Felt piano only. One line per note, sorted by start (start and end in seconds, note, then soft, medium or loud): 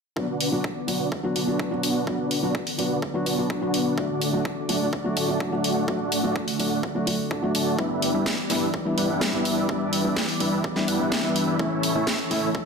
0.16 0.23 F#3 medium
0.16 0.24 B3 medium
0.16 0.24 D4 medium
0.16 0.24 F#4 medium
0.52 0.59 F#3 medium
0.52 0.59 B3 medium
0.52 0.59 D4 medium
0.52 0.60 F#4 medium
0.87 0.95 F#3 medium
0.87 0.95 B3 medium
0.87 0.95 D4 medium
0.87 0.95 F#4 medium
1.23 1.44 F#3 medium
1.23 1.45 B3 medium
1.23 1.45 D4 medium
1.23 1.45 F#4 medium
1.47 1.68 F#3 medium
1.47 1.68 B3 medium
1.47 1.69 D4 medium
1.47 1.69 F#4 medium
1.71 2.04 F#3 medium
1.71 2.04 B3 medium
1.71 2.04 D4 medium
1.71 2.05 F#4 medium
2.07 2.14 F#3 medium
2.07 2.14 B3 medium
2.07 2.14 D4 medium
2.07 2.15 F#4 medium
2.42 2.50 F#3 medium
2.42 2.50 B3 medium
2.42 2.50 D4 medium
2.42 2.50 F#4 medium
2.78 2.85 F#3 medium
2.78 2.86 B3 medium
2.78 2.86 D4 medium
2.78 2.86 F#4 medium
3.14 3.35 F#3 medium
3.14 3.35 B3 medium
3.14 3.35 D4 medium
3.14 3.36 F#4 medium
3.38 3.59 F#3 medium
3.38 3.59 B3 medium
3.38 3.59 D4 medium
3.38 3.59 F#4 medium
3.61 3.95 F#3 medium
3.61 3.95 B3 medium
3.61 3.95 D4 medium
3.61 3.95 F#4 medium
3.97 4.04 F#3 medium
3.97 4.05 A3 medium
3.97 4.05 D4 medium
3.97 4.05 F#4 medium
4.33 4.40 F#3 medium
4.33 4.40 A3 medium
4.33 4.40 D4 medium
4.33 4.41 F#4 medium
4.69 4.76 F#3 medium
4.69 4.76 A3 medium
4.69 4.76 D4 medium
4.69 4.76 F#4 medium
5.04 5.25 F#3 medium
5.04 5.26 A3 medium
5.04 5.26 D4 medium
5.04 5.26 F#4 medium
5.28 5.49 F#3 medium
5.28 5.49 A3 medium
5.28 5.50 D4 medium
5.28 5.50 F#4 medium
5.52 5.85 F#3 medium
5.52 5.85 A3 medium
5.52 5.85 D4 medium
5.52 5.86 F#4 medium
5.87 5.95 F#3 medium
5.87 5.95 A3 medium
5.87 5.95 D4 medium
5.87 5.95 F#4 medium
6.23 6.31 F#3 medium
6.23 6.31 A3 medium
6.23 6.31 D4 medium
6.23 6.31 F#4 medium
6.59 6.66 F#3 medium
6.59 6.66 A3 medium
6.59 6.67 D4 medium
6.59 6.67 F#4 medium
6.95 7.04 F#3 medium
6.95 7.05 A3 medium
6.95 7.05 D4 medium
6.95 7.05 F#4 medium
7.07 7.14 F#3 medium
7.07 7.14 A3 medium
7.07 7.14 D4 medium
7.07 7.14 F#4 medium
7.42 7.75 F#3 medium
7.42 7.76 A3 medium
7.42 7.76 D4 medium
7.42 7.76 F#4 medium
7.78 7.85 G3 medium
7.78 7.85 B3 medium
7.78 7.86 D4 medium
7.78 7.86 E4 medium
8.14 8.21 G3 medium
8.14 8.21 B3 medium
8.14 8.21 D4 medium
8.14 8.22 E4 medium
8.49 8.57 G3 medium
8.49 8.57 B3 medium
8.49 8.57 D4 medium
8.49 8.57 E4 medium
8.85 9.06 G3 medium
8.85 9.07 B3 medium
8.85 9.07 D4 medium
8.85 9.07 E4 medium
9.09 9.30 G3 medium
9.09 9.30 B3 medium
9.09 9.31 D4 medium
9.09 9.31 E4 medium
9.33 9.66 G3 medium
9.33 9.66 B3 medium
9.33 9.66 D4 medium
9.33 9.67 E4 medium
9.68 9.76 G3 medium
9.68 9.76 B3 medium
9.68 9.76 D4 medium
9.68 9.76 E4 medium
10.04 10.11 G3 medium
10.04 10.12 B3 medium
10.04 10.12 D4 medium
10.04 10.12 E4 medium
10.40 10.47 G3 medium
10.40 10.47 B3 medium
10.40 10.48 D4 medium
10.40 10.48 E4 medium
10.76 10.97 G3 medium
10.76 10.97 B3 medium
10.76 10.97 D4 medium
10.76 10.97 E4 medium
10.99 11.21 G3 medium
10.99 11.21 B3 medium
10.99 11.21 D4 medium
10.99 11.21 E4 medium
11.23 11.56 G3 medium
11.23 11.57 B3 medium
11.23 11.57 D4 medium
11.23 11.57 E4 medium
11.59 11.66 E3 medium
11.59 11.66 A3 medium
11.59 11.67 C#4 medium
11.59 11.67 E4 medium
11.95 12.02 E3 medium
11.95 12.02 A3 medium
11.95 12.02 C#4 medium
11.95 12.03 E4 medium
12.30 12.38 E3 medium
12.30 12.38 A3 medium
12.30 12.38 C#4 medium
12.30 12.38 E4 medium